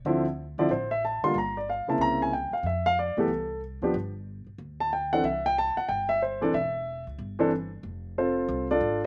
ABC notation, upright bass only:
X:1
M:4/4
L:1/8
Q:"Swing" 1/4=185
K:C
V:1 name="Upright bass" clef=bass
D,,3 _D,, A,,,3 z | G,,,3 z C,,3 z | F,,3 ^F,, C,,3 D,, | G,,,3 z D,,4 |
C,,3 z G,,,4 | E,,,3 _D,, G,,,4 | [K:F] F,,,4 C,,2 _A,,,2 |]